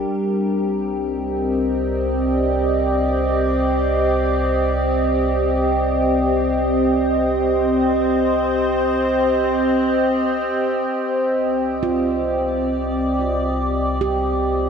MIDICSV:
0, 0, Header, 1, 4, 480
1, 0, Start_track
1, 0, Key_signature, -3, "minor"
1, 0, Tempo, 500000
1, 14107, End_track
2, 0, Start_track
2, 0, Title_t, "Ambient pad"
2, 0, Program_c, 0, 92
2, 0, Note_on_c, 0, 55, 64
2, 0, Note_on_c, 0, 62, 81
2, 0, Note_on_c, 0, 67, 81
2, 0, Note_on_c, 0, 70, 59
2, 96, Note_off_c, 0, 55, 0
2, 98, Note_off_c, 0, 62, 0
2, 98, Note_on_c, 0, 60, 68
2, 602, Note_on_c, 0, 74, 63
2, 820, Note_on_c, 0, 75, 74
2, 1970, Note_off_c, 0, 70, 0
2, 6434, Note_on_c, 0, 72, 61
2, 6685, Note_off_c, 0, 74, 0
2, 10884, Note_on_c, 0, 74, 64
2, 11556, Note_off_c, 0, 72, 0
2, 14107, Note_off_c, 0, 60, 0
2, 14107, Note_off_c, 0, 67, 0
2, 14107, Note_off_c, 0, 74, 0
2, 14107, Note_off_c, 0, 75, 0
2, 14107, End_track
3, 0, Start_track
3, 0, Title_t, "Handpan"
3, 0, Program_c, 1, 114
3, 11355, Note_on_c, 1, 65, 53
3, 13451, Note_on_c, 1, 67, 55
3, 13997, Note_off_c, 1, 65, 0
3, 14107, Note_off_c, 1, 67, 0
3, 14107, End_track
4, 0, Start_track
4, 0, Title_t, "Sub bass"
4, 0, Program_c, 2, 38
4, 89, Note_on_c, 2, 36, 79
4, 10446, Note_off_c, 2, 36, 0
4, 10494, Note_on_c, 2, 36, 72
4, 14107, Note_off_c, 2, 36, 0
4, 14107, End_track
0, 0, End_of_file